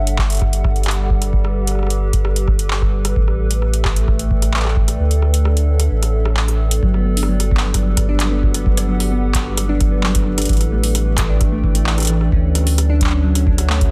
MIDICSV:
0, 0, Header, 1, 5, 480
1, 0, Start_track
1, 0, Tempo, 458015
1, 1395, Time_signature, 4, 2, 24, 8
1, 14581, End_track
2, 0, Start_track
2, 0, Title_t, "Ambient pad"
2, 0, Program_c, 0, 92
2, 0, Note_on_c, 0, 55, 85
2, 0, Note_on_c, 0, 62, 92
2, 0, Note_on_c, 0, 67, 75
2, 0, Note_on_c, 0, 69, 87
2, 0, Note_on_c, 0, 76, 85
2, 0, Note_on_c, 0, 78, 69
2, 305, Note_on_c, 0, 71, 82
2, 1011, Note_off_c, 0, 62, 0
2, 1012, Note_off_c, 0, 76, 0
2, 3315, Note_off_c, 0, 55, 0
2, 3315, Note_off_c, 0, 78, 0
2, 3315, Note_on_c, 0, 57, 73
2, 4084, Note_off_c, 0, 67, 0
2, 4097, Note_on_c, 0, 74, 72
2, 4179, Note_on_c, 0, 79, 70
2, 5234, Note_on_c, 0, 62, 88
2, 5235, Note_off_c, 0, 57, 0
2, 5235, Note_off_c, 0, 74, 0
2, 5235, Note_off_c, 0, 79, 0
2, 5619, Note_off_c, 0, 71, 0
2, 5667, Note_on_c, 0, 76, 65
2, 6196, Note_on_c, 0, 57, 80
2, 6579, Note_off_c, 0, 62, 0
2, 6579, Note_off_c, 0, 76, 0
2, 6625, Note_on_c, 0, 71, 77
2, 6626, Note_on_c, 0, 74, 86
2, 7155, Note_off_c, 0, 57, 0
2, 7155, Note_on_c, 0, 55, 89
2, 7283, Note_on_c, 0, 67, 76
2, 8381, Note_on_c, 0, 78, 96
2, 8565, Note_off_c, 0, 74, 0
2, 10995, Note_off_c, 0, 55, 0
2, 10995, Note_off_c, 0, 78, 0
2, 10996, Note_on_c, 0, 57, 94
2, 11485, Note_on_c, 0, 79, 85
2, 11763, Note_off_c, 0, 67, 0
2, 11859, Note_on_c, 0, 74, 87
2, 12913, Note_on_c, 0, 62, 96
2, 12915, Note_off_c, 0, 57, 0
2, 12915, Note_off_c, 0, 74, 0
2, 12915, Note_off_c, 0, 79, 0
2, 13266, Note_on_c, 0, 78, 87
2, 13313, Note_on_c, 0, 73, 92
2, 13682, Note_off_c, 0, 71, 0
2, 13778, Note_on_c, 0, 76, 73
2, 14581, Note_off_c, 0, 62, 0
2, 14581, Note_off_c, 0, 69, 0
2, 14581, Note_off_c, 0, 73, 0
2, 14581, Note_off_c, 0, 76, 0
2, 14581, Note_off_c, 0, 78, 0
2, 14581, End_track
3, 0, Start_track
3, 0, Title_t, "Synth pluck"
3, 0, Program_c, 1, 84
3, 7156, Note_on_c, 1, 54, 103
3, 7224, Note_off_c, 1, 54, 0
3, 7275, Note_on_c, 1, 59, 77
3, 7344, Note_off_c, 1, 59, 0
3, 7395, Note_on_c, 1, 54, 74
3, 7498, Note_off_c, 1, 54, 0
3, 7516, Note_on_c, 1, 62, 76
3, 7618, Note_off_c, 1, 62, 0
3, 7635, Note_on_c, 1, 54, 96
3, 7704, Note_off_c, 1, 54, 0
3, 7876, Note_on_c, 1, 59, 80
3, 7978, Note_off_c, 1, 59, 0
3, 8115, Note_on_c, 1, 54, 87
3, 8218, Note_off_c, 1, 54, 0
3, 8476, Note_on_c, 1, 62, 98
3, 8578, Note_off_c, 1, 62, 0
3, 8595, Note_on_c, 1, 54, 86
3, 8664, Note_off_c, 1, 54, 0
3, 8714, Note_on_c, 1, 59, 75
3, 8756, Note_off_c, 1, 59, 0
3, 8835, Note_on_c, 1, 54, 101
3, 8903, Note_off_c, 1, 54, 0
3, 8954, Note_on_c, 1, 59, 77
3, 9023, Note_off_c, 1, 59, 0
3, 9074, Note_on_c, 1, 54, 84
3, 9178, Note_off_c, 1, 54, 0
3, 9193, Note_on_c, 1, 62, 79
3, 9297, Note_off_c, 1, 62, 0
3, 9313, Note_on_c, 1, 54, 102
3, 9383, Note_off_c, 1, 54, 0
3, 9555, Note_on_c, 1, 59, 84
3, 9658, Note_off_c, 1, 59, 0
3, 9795, Note_on_c, 1, 54, 80
3, 9898, Note_off_c, 1, 54, 0
3, 10156, Note_on_c, 1, 62, 104
3, 10258, Note_off_c, 1, 62, 0
3, 10277, Note_on_c, 1, 54, 81
3, 10344, Note_off_c, 1, 54, 0
3, 10396, Note_on_c, 1, 59, 73
3, 10437, Note_off_c, 1, 59, 0
3, 10515, Note_on_c, 1, 54, 98
3, 10583, Note_off_c, 1, 54, 0
3, 10635, Note_on_c, 1, 59, 78
3, 10704, Note_off_c, 1, 59, 0
3, 10755, Note_on_c, 1, 54, 74
3, 10858, Note_off_c, 1, 54, 0
3, 10876, Note_on_c, 1, 62, 75
3, 10978, Note_off_c, 1, 62, 0
3, 10996, Note_on_c, 1, 52, 100
3, 11064, Note_off_c, 1, 52, 0
3, 11235, Note_on_c, 1, 57, 77
3, 11338, Note_off_c, 1, 57, 0
3, 11474, Note_on_c, 1, 52, 80
3, 11577, Note_off_c, 1, 52, 0
3, 11835, Note_on_c, 1, 62, 102
3, 11938, Note_off_c, 1, 62, 0
3, 11955, Note_on_c, 1, 52, 85
3, 12024, Note_off_c, 1, 52, 0
3, 12076, Note_on_c, 1, 57, 80
3, 12117, Note_off_c, 1, 57, 0
3, 12196, Note_on_c, 1, 52, 107
3, 12264, Note_off_c, 1, 52, 0
3, 12316, Note_on_c, 1, 57, 75
3, 12384, Note_off_c, 1, 57, 0
3, 12436, Note_on_c, 1, 52, 82
3, 12538, Note_off_c, 1, 52, 0
3, 12556, Note_on_c, 1, 62, 76
3, 12658, Note_off_c, 1, 62, 0
3, 12675, Note_on_c, 1, 52, 101
3, 12744, Note_off_c, 1, 52, 0
3, 12915, Note_on_c, 1, 61, 88
3, 13018, Note_off_c, 1, 61, 0
3, 13155, Note_on_c, 1, 54, 78
3, 13258, Note_off_c, 1, 54, 0
3, 13514, Note_on_c, 1, 62, 101
3, 13618, Note_off_c, 1, 62, 0
3, 13634, Note_on_c, 1, 54, 77
3, 13703, Note_off_c, 1, 54, 0
3, 13754, Note_on_c, 1, 61, 76
3, 13796, Note_off_c, 1, 61, 0
3, 13873, Note_on_c, 1, 54, 106
3, 13943, Note_off_c, 1, 54, 0
3, 13993, Note_on_c, 1, 61, 78
3, 14063, Note_off_c, 1, 61, 0
3, 14113, Note_on_c, 1, 62, 81
3, 14155, Note_off_c, 1, 62, 0
3, 14234, Note_on_c, 1, 66, 76
3, 14303, Note_off_c, 1, 66, 0
3, 14355, Note_on_c, 1, 57, 83
3, 14423, Note_off_c, 1, 57, 0
3, 14581, End_track
4, 0, Start_track
4, 0, Title_t, "Sub bass"
4, 0, Program_c, 2, 38
4, 0, Note_on_c, 2, 31, 87
4, 3291, Note_off_c, 2, 31, 0
4, 3315, Note_on_c, 2, 33, 87
4, 5211, Note_off_c, 2, 33, 0
4, 5234, Note_on_c, 2, 38, 90
4, 6170, Note_off_c, 2, 38, 0
4, 6194, Note_on_c, 2, 33, 86
4, 7130, Note_off_c, 2, 33, 0
4, 7155, Note_on_c, 2, 31, 89
4, 10971, Note_off_c, 2, 31, 0
4, 10996, Note_on_c, 2, 33, 89
4, 12891, Note_off_c, 2, 33, 0
4, 12915, Note_on_c, 2, 38, 87
4, 14581, Note_off_c, 2, 38, 0
4, 14581, End_track
5, 0, Start_track
5, 0, Title_t, "Drums"
5, 74, Note_on_c, 9, 42, 50
5, 179, Note_off_c, 9, 42, 0
5, 195, Note_on_c, 9, 36, 81
5, 195, Note_on_c, 9, 37, 51
5, 195, Note_on_c, 9, 39, 117
5, 299, Note_off_c, 9, 36, 0
5, 300, Note_off_c, 9, 37, 0
5, 300, Note_off_c, 9, 39, 0
5, 315, Note_on_c, 9, 42, 52
5, 339, Note_off_c, 9, 42, 0
5, 339, Note_on_c, 9, 42, 46
5, 364, Note_off_c, 9, 42, 0
5, 364, Note_on_c, 9, 42, 37
5, 388, Note_off_c, 9, 42, 0
5, 388, Note_on_c, 9, 42, 31
5, 412, Note_off_c, 9, 42, 0
5, 412, Note_on_c, 9, 42, 24
5, 435, Note_on_c, 9, 36, 82
5, 436, Note_on_c, 9, 37, 50
5, 517, Note_off_c, 9, 42, 0
5, 539, Note_off_c, 9, 36, 0
5, 541, Note_off_c, 9, 37, 0
5, 556, Note_on_c, 9, 42, 49
5, 661, Note_off_c, 9, 42, 0
5, 674, Note_on_c, 9, 36, 104
5, 675, Note_on_c, 9, 37, 70
5, 779, Note_off_c, 9, 36, 0
5, 780, Note_off_c, 9, 37, 0
5, 795, Note_on_c, 9, 42, 28
5, 875, Note_off_c, 9, 42, 0
5, 875, Note_on_c, 9, 42, 37
5, 914, Note_on_c, 9, 37, 49
5, 914, Note_on_c, 9, 39, 113
5, 954, Note_off_c, 9, 42, 0
5, 954, Note_on_c, 9, 42, 45
5, 1019, Note_off_c, 9, 37, 0
5, 1019, Note_off_c, 9, 39, 0
5, 1059, Note_off_c, 9, 42, 0
5, 1155, Note_on_c, 9, 36, 81
5, 1259, Note_off_c, 9, 36, 0
5, 1275, Note_on_c, 9, 37, 46
5, 1275, Note_on_c, 9, 42, 62
5, 1380, Note_off_c, 9, 37, 0
5, 1380, Note_off_c, 9, 42, 0
5, 1395, Note_on_c, 9, 36, 98
5, 1499, Note_off_c, 9, 36, 0
5, 1515, Note_on_c, 9, 37, 70
5, 1620, Note_off_c, 9, 37, 0
5, 1755, Note_on_c, 9, 37, 21
5, 1755, Note_on_c, 9, 42, 57
5, 1795, Note_off_c, 9, 37, 0
5, 1795, Note_on_c, 9, 37, 26
5, 1835, Note_off_c, 9, 37, 0
5, 1835, Note_on_c, 9, 37, 30
5, 1859, Note_off_c, 9, 42, 0
5, 1875, Note_off_c, 9, 37, 0
5, 1875, Note_on_c, 9, 37, 33
5, 1915, Note_off_c, 9, 37, 0
5, 1915, Note_on_c, 9, 37, 40
5, 1956, Note_off_c, 9, 37, 0
5, 1956, Note_on_c, 9, 37, 42
5, 1995, Note_on_c, 9, 42, 47
5, 2061, Note_off_c, 9, 37, 0
5, 2100, Note_off_c, 9, 42, 0
5, 2235, Note_on_c, 9, 36, 78
5, 2235, Note_on_c, 9, 42, 56
5, 2340, Note_off_c, 9, 36, 0
5, 2340, Note_off_c, 9, 42, 0
5, 2355, Note_on_c, 9, 37, 78
5, 2460, Note_off_c, 9, 37, 0
5, 2475, Note_on_c, 9, 42, 46
5, 2580, Note_off_c, 9, 42, 0
5, 2595, Note_on_c, 9, 36, 102
5, 2595, Note_on_c, 9, 37, 51
5, 2700, Note_off_c, 9, 36, 0
5, 2700, Note_off_c, 9, 37, 0
5, 2715, Note_on_c, 9, 42, 59
5, 2820, Note_off_c, 9, 42, 0
5, 2835, Note_on_c, 9, 39, 105
5, 2940, Note_off_c, 9, 39, 0
5, 2955, Note_on_c, 9, 36, 76
5, 2955, Note_on_c, 9, 37, 48
5, 3059, Note_off_c, 9, 37, 0
5, 3060, Note_off_c, 9, 36, 0
5, 3195, Note_on_c, 9, 37, 74
5, 3195, Note_on_c, 9, 42, 62
5, 3300, Note_off_c, 9, 37, 0
5, 3300, Note_off_c, 9, 42, 0
5, 3315, Note_on_c, 9, 36, 95
5, 3420, Note_off_c, 9, 36, 0
5, 3435, Note_on_c, 9, 37, 52
5, 3540, Note_off_c, 9, 37, 0
5, 3674, Note_on_c, 9, 42, 59
5, 3779, Note_off_c, 9, 42, 0
5, 3795, Note_on_c, 9, 37, 51
5, 3899, Note_off_c, 9, 37, 0
5, 3915, Note_on_c, 9, 42, 50
5, 4020, Note_off_c, 9, 42, 0
5, 4035, Note_on_c, 9, 36, 80
5, 4035, Note_on_c, 9, 37, 84
5, 4035, Note_on_c, 9, 39, 111
5, 4140, Note_off_c, 9, 36, 0
5, 4140, Note_off_c, 9, 37, 0
5, 4140, Note_off_c, 9, 39, 0
5, 4154, Note_on_c, 9, 42, 63
5, 4259, Note_off_c, 9, 42, 0
5, 4274, Note_on_c, 9, 37, 55
5, 4275, Note_on_c, 9, 36, 74
5, 4379, Note_off_c, 9, 37, 0
5, 4380, Note_off_c, 9, 36, 0
5, 4395, Note_on_c, 9, 42, 50
5, 4500, Note_off_c, 9, 42, 0
5, 4515, Note_on_c, 9, 36, 94
5, 4620, Note_off_c, 9, 36, 0
5, 4635, Note_on_c, 9, 37, 51
5, 4635, Note_on_c, 9, 42, 62
5, 4739, Note_off_c, 9, 37, 0
5, 4739, Note_off_c, 9, 42, 0
5, 4755, Note_on_c, 9, 39, 107
5, 4784, Note_off_c, 9, 39, 0
5, 4784, Note_on_c, 9, 39, 89
5, 4814, Note_off_c, 9, 39, 0
5, 4814, Note_on_c, 9, 39, 69
5, 4845, Note_off_c, 9, 39, 0
5, 4845, Note_on_c, 9, 39, 56
5, 4875, Note_off_c, 9, 39, 0
5, 4875, Note_on_c, 9, 37, 77
5, 4875, Note_on_c, 9, 39, 46
5, 4905, Note_off_c, 9, 39, 0
5, 4905, Note_on_c, 9, 39, 37
5, 4934, Note_off_c, 9, 39, 0
5, 4934, Note_on_c, 9, 39, 30
5, 4964, Note_off_c, 9, 39, 0
5, 4964, Note_on_c, 9, 39, 24
5, 4979, Note_off_c, 9, 37, 0
5, 4995, Note_on_c, 9, 36, 78
5, 5069, Note_off_c, 9, 39, 0
5, 5100, Note_off_c, 9, 36, 0
5, 5114, Note_on_c, 9, 37, 52
5, 5114, Note_on_c, 9, 42, 66
5, 5219, Note_off_c, 9, 37, 0
5, 5219, Note_off_c, 9, 42, 0
5, 5354, Note_on_c, 9, 42, 36
5, 5459, Note_off_c, 9, 42, 0
5, 5474, Note_on_c, 9, 37, 55
5, 5579, Note_off_c, 9, 37, 0
5, 5595, Note_on_c, 9, 42, 65
5, 5699, Note_off_c, 9, 42, 0
5, 5714, Note_on_c, 9, 37, 79
5, 5819, Note_off_c, 9, 37, 0
5, 5835, Note_on_c, 9, 42, 51
5, 5940, Note_off_c, 9, 42, 0
5, 6074, Note_on_c, 9, 37, 50
5, 6074, Note_on_c, 9, 42, 62
5, 6179, Note_off_c, 9, 37, 0
5, 6179, Note_off_c, 9, 42, 0
5, 6315, Note_on_c, 9, 37, 52
5, 6315, Note_on_c, 9, 42, 51
5, 6420, Note_off_c, 9, 37, 0
5, 6420, Note_off_c, 9, 42, 0
5, 6555, Note_on_c, 9, 37, 81
5, 6659, Note_off_c, 9, 37, 0
5, 6674, Note_on_c, 9, 39, 109
5, 6779, Note_off_c, 9, 39, 0
5, 6794, Note_on_c, 9, 37, 52
5, 6794, Note_on_c, 9, 42, 35
5, 6899, Note_off_c, 9, 37, 0
5, 6899, Note_off_c, 9, 42, 0
5, 7035, Note_on_c, 9, 42, 65
5, 7139, Note_off_c, 9, 42, 0
5, 7155, Note_on_c, 9, 36, 105
5, 7260, Note_off_c, 9, 36, 0
5, 7275, Note_on_c, 9, 37, 52
5, 7379, Note_off_c, 9, 37, 0
5, 7514, Note_on_c, 9, 46, 72
5, 7575, Note_on_c, 9, 37, 80
5, 7619, Note_off_c, 9, 46, 0
5, 7679, Note_off_c, 9, 37, 0
5, 7755, Note_on_c, 9, 37, 54
5, 7755, Note_on_c, 9, 42, 53
5, 7860, Note_off_c, 9, 37, 0
5, 7860, Note_off_c, 9, 42, 0
5, 7875, Note_on_c, 9, 36, 86
5, 7935, Note_on_c, 9, 39, 126
5, 7980, Note_off_c, 9, 36, 0
5, 8040, Note_off_c, 9, 39, 0
5, 8114, Note_on_c, 9, 37, 56
5, 8114, Note_on_c, 9, 42, 87
5, 8115, Note_on_c, 9, 36, 80
5, 8219, Note_off_c, 9, 37, 0
5, 8219, Note_off_c, 9, 42, 0
5, 8220, Note_off_c, 9, 36, 0
5, 8354, Note_on_c, 9, 37, 84
5, 8354, Note_on_c, 9, 42, 102
5, 8355, Note_on_c, 9, 36, 103
5, 8459, Note_off_c, 9, 37, 0
5, 8459, Note_off_c, 9, 42, 0
5, 8460, Note_off_c, 9, 36, 0
5, 8594, Note_on_c, 9, 37, 55
5, 8594, Note_on_c, 9, 39, 118
5, 8594, Note_on_c, 9, 42, 56
5, 8699, Note_off_c, 9, 37, 0
5, 8699, Note_off_c, 9, 39, 0
5, 8699, Note_off_c, 9, 42, 0
5, 8836, Note_on_c, 9, 36, 86
5, 8941, Note_off_c, 9, 36, 0
5, 8954, Note_on_c, 9, 37, 55
5, 8954, Note_on_c, 9, 42, 85
5, 9059, Note_off_c, 9, 37, 0
5, 9059, Note_off_c, 9, 42, 0
5, 9076, Note_on_c, 9, 36, 113
5, 9181, Note_off_c, 9, 36, 0
5, 9195, Note_on_c, 9, 37, 78
5, 9195, Note_on_c, 9, 42, 96
5, 9300, Note_off_c, 9, 37, 0
5, 9300, Note_off_c, 9, 42, 0
5, 9434, Note_on_c, 9, 37, 50
5, 9434, Note_on_c, 9, 46, 73
5, 9539, Note_off_c, 9, 37, 0
5, 9539, Note_off_c, 9, 46, 0
5, 9795, Note_on_c, 9, 37, 55
5, 9795, Note_on_c, 9, 39, 127
5, 9795, Note_on_c, 9, 42, 86
5, 9796, Note_on_c, 9, 36, 91
5, 9900, Note_off_c, 9, 37, 0
5, 9900, Note_off_c, 9, 39, 0
5, 9900, Note_off_c, 9, 42, 0
5, 9901, Note_off_c, 9, 36, 0
5, 10034, Note_on_c, 9, 37, 83
5, 10034, Note_on_c, 9, 42, 104
5, 10139, Note_off_c, 9, 37, 0
5, 10139, Note_off_c, 9, 42, 0
5, 10276, Note_on_c, 9, 36, 113
5, 10276, Note_on_c, 9, 37, 53
5, 10276, Note_on_c, 9, 42, 54
5, 10381, Note_off_c, 9, 36, 0
5, 10381, Note_off_c, 9, 37, 0
5, 10381, Note_off_c, 9, 42, 0
5, 10516, Note_on_c, 9, 39, 122
5, 10620, Note_off_c, 9, 39, 0
5, 10636, Note_on_c, 9, 36, 92
5, 10636, Note_on_c, 9, 37, 23
5, 10636, Note_on_c, 9, 42, 83
5, 10667, Note_off_c, 9, 37, 0
5, 10667, Note_on_c, 9, 37, 29
5, 10697, Note_off_c, 9, 37, 0
5, 10697, Note_on_c, 9, 37, 35
5, 10726, Note_off_c, 9, 37, 0
5, 10726, Note_on_c, 9, 37, 43
5, 10741, Note_off_c, 9, 36, 0
5, 10741, Note_off_c, 9, 42, 0
5, 10831, Note_off_c, 9, 37, 0
5, 10876, Note_on_c, 9, 37, 79
5, 10876, Note_on_c, 9, 42, 94
5, 10916, Note_off_c, 9, 42, 0
5, 10916, Note_on_c, 9, 42, 74
5, 10956, Note_off_c, 9, 42, 0
5, 10956, Note_on_c, 9, 42, 65
5, 10981, Note_off_c, 9, 37, 0
5, 10996, Note_on_c, 9, 36, 112
5, 10997, Note_off_c, 9, 42, 0
5, 10997, Note_on_c, 9, 42, 51
5, 11036, Note_off_c, 9, 42, 0
5, 11036, Note_on_c, 9, 42, 44
5, 11076, Note_off_c, 9, 42, 0
5, 11076, Note_on_c, 9, 42, 36
5, 11101, Note_off_c, 9, 36, 0
5, 11116, Note_off_c, 9, 42, 0
5, 11116, Note_on_c, 9, 37, 49
5, 11116, Note_on_c, 9, 42, 51
5, 11220, Note_off_c, 9, 37, 0
5, 11220, Note_off_c, 9, 42, 0
5, 11355, Note_on_c, 9, 46, 75
5, 11460, Note_off_c, 9, 46, 0
5, 11475, Note_on_c, 9, 37, 50
5, 11475, Note_on_c, 9, 42, 80
5, 11580, Note_off_c, 9, 37, 0
5, 11580, Note_off_c, 9, 42, 0
5, 11715, Note_on_c, 9, 37, 77
5, 11715, Note_on_c, 9, 39, 127
5, 11715, Note_on_c, 9, 42, 100
5, 11716, Note_on_c, 9, 36, 91
5, 11819, Note_off_c, 9, 37, 0
5, 11819, Note_off_c, 9, 39, 0
5, 11819, Note_off_c, 9, 42, 0
5, 11821, Note_off_c, 9, 36, 0
5, 11954, Note_on_c, 9, 37, 51
5, 11954, Note_on_c, 9, 42, 55
5, 11956, Note_on_c, 9, 36, 91
5, 12059, Note_off_c, 9, 37, 0
5, 12059, Note_off_c, 9, 42, 0
5, 12061, Note_off_c, 9, 36, 0
5, 12196, Note_on_c, 9, 36, 109
5, 12300, Note_off_c, 9, 36, 0
5, 12314, Note_on_c, 9, 42, 79
5, 12419, Note_off_c, 9, 42, 0
5, 12434, Note_on_c, 9, 39, 123
5, 12539, Note_off_c, 9, 39, 0
5, 12555, Note_on_c, 9, 37, 70
5, 12555, Note_on_c, 9, 42, 42
5, 12579, Note_off_c, 9, 42, 0
5, 12579, Note_on_c, 9, 42, 51
5, 12595, Note_off_c, 9, 37, 0
5, 12595, Note_on_c, 9, 37, 57
5, 12603, Note_off_c, 9, 42, 0
5, 12603, Note_on_c, 9, 42, 61
5, 12627, Note_off_c, 9, 42, 0
5, 12627, Note_on_c, 9, 42, 67
5, 12636, Note_off_c, 9, 37, 0
5, 12636, Note_on_c, 9, 37, 46
5, 12652, Note_off_c, 9, 42, 0
5, 12652, Note_on_c, 9, 42, 81
5, 12675, Note_off_c, 9, 37, 0
5, 12675, Note_on_c, 9, 37, 44
5, 12715, Note_off_c, 9, 37, 0
5, 12715, Note_on_c, 9, 37, 36
5, 12756, Note_off_c, 9, 37, 0
5, 12756, Note_on_c, 9, 37, 28
5, 12757, Note_off_c, 9, 42, 0
5, 12795, Note_off_c, 9, 37, 0
5, 12795, Note_on_c, 9, 37, 54
5, 12900, Note_off_c, 9, 37, 0
5, 12915, Note_on_c, 9, 36, 109
5, 13020, Note_off_c, 9, 36, 0
5, 13154, Note_on_c, 9, 37, 46
5, 13154, Note_on_c, 9, 42, 80
5, 13184, Note_off_c, 9, 37, 0
5, 13184, Note_on_c, 9, 37, 37
5, 13214, Note_off_c, 9, 37, 0
5, 13214, Note_on_c, 9, 37, 31
5, 13245, Note_off_c, 9, 37, 0
5, 13245, Note_on_c, 9, 37, 27
5, 13259, Note_off_c, 9, 42, 0
5, 13276, Note_off_c, 9, 37, 0
5, 13276, Note_on_c, 9, 37, 21
5, 13276, Note_on_c, 9, 46, 77
5, 13335, Note_off_c, 9, 37, 0
5, 13335, Note_on_c, 9, 37, 13
5, 13366, Note_off_c, 9, 37, 0
5, 13366, Note_on_c, 9, 37, 12
5, 13380, Note_off_c, 9, 46, 0
5, 13395, Note_off_c, 9, 37, 0
5, 13395, Note_on_c, 9, 37, 72
5, 13395, Note_on_c, 9, 42, 88
5, 13500, Note_off_c, 9, 37, 0
5, 13500, Note_off_c, 9, 42, 0
5, 13634, Note_on_c, 9, 42, 54
5, 13635, Note_on_c, 9, 36, 90
5, 13664, Note_on_c, 9, 39, 104
5, 13682, Note_on_c, 9, 37, 34
5, 13694, Note_off_c, 9, 39, 0
5, 13694, Note_on_c, 9, 39, 85
5, 13707, Note_off_c, 9, 37, 0
5, 13707, Note_on_c, 9, 37, 26
5, 13725, Note_off_c, 9, 39, 0
5, 13725, Note_on_c, 9, 39, 68
5, 13731, Note_off_c, 9, 37, 0
5, 13731, Note_on_c, 9, 37, 23
5, 13739, Note_off_c, 9, 36, 0
5, 13739, Note_off_c, 9, 42, 0
5, 13830, Note_off_c, 9, 39, 0
5, 13835, Note_off_c, 9, 37, 0
5, 13995, Note_on_c, 9, 37, 51
5, 13995, Note_on_c, 9, 42, 75
5, 14099, Note_off_c, 9, 37, 0
5, 14099, Note_off_c, 9, 42, 0
5, 14115, Note_on_c, 9, 36, 111
5, 14220, Note_off_c, 9, 36, 0
5, 14234, Note_on_c, 9, 37, 74
5, 14234, Note_on_c, 9, 42, 91
5, 14339, Note_off_c, 9, 37, 0
5, 14339, Note_off_c, 9, 42, 0
5, 14355, Note_on_c, 9, 39, 125
5, 14459, Note_off_c, 9, 39, 0
5, 14475, Note_on_c, 9, 36, 88
5, 14476, Note_on_c, 9, 37, 49
5, 14476, Note_on_c, 9, 42, 50
5, 14579, Note_off_c, 9, 36, 0
5, 14580, Note_off_c, 9, 37, 0
5, 14580, Note_off_c, 9, 42, 0
5, 14581, End_track
0, 0, End_of_file